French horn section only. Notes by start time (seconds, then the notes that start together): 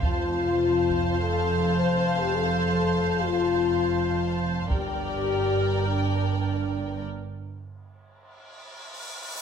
0.04 F4
1.20 A4
1.79 C5
2.20 G4
2.35 A4
3.25 F4
4.71 G4
5.87 D4